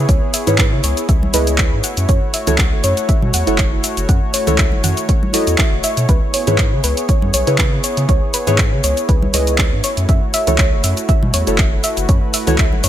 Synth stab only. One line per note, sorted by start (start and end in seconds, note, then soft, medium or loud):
0.47 0.65 E4 loud
0.47 0.66 G#4 medium
0.47 0.66 B4 medium
0.47 0.66 C#5 loud
1.33 1.82 E4 medium
1.33 1.82 G#4 medium
1.33 1.82 B4 medium
1.33 1.83 D#5 medium
2.47 2.65 E4 medium
2.47 2.66 F#4 medium
2.47 2.66 A4 medium
2.47 2.66 C#5 loud
3.47 3.58 E4 medium
3.47 3.58 F#4 medium
3.47 3.58 A4 medium
3.47 3.58 C#5 medium
4.47 4.65 E4 loud
4.47 4.66 F#4 medium
4.47 4.66 A4 medium
4.47 4.66 C#5 loud
5.33 6.07 E4 medium
5.33 6.07 F#4 medium
5.33 6.08 A4 medium
5.33 6.08 D#5 medium
6.47 6.65 E4 medium
6.47 6.66 G#4 medium
6.47 6.66 B4 medium
6.47 6.66 C#5 loud
7.47 7.58 E4 medium
7.47 7.58 G#4 medium
7.47 7.58 B4 medium
7.47 7.58 C#5 medium
8.47 8.65 E4 loud
8.47 8.66 G#4 medium
8.47 8.66 B4 medium
8.47 8.66 C#5 loud
9.33 9.82 E4 medium
9.33 9.82 G#4 medium
9.33 9.82 B4 medium
9.33 9.83 D#5 medium
10.47 10.65 E4 medium
10.47 10.66 F#4 medium
10.47 10.66 A4 medium
10.47 10.66 C#5 loud
11.47 11.58 E4 medium
11.47 11.58 F#4 medium
11.47 11.58 A4 medium
11.47 11.58 C#5 medium
12.47 12.65 E4 loud
12.47 12.66 F#4 medium
12.47 12.66 A4 medium
12.47 12.66 C#5 loud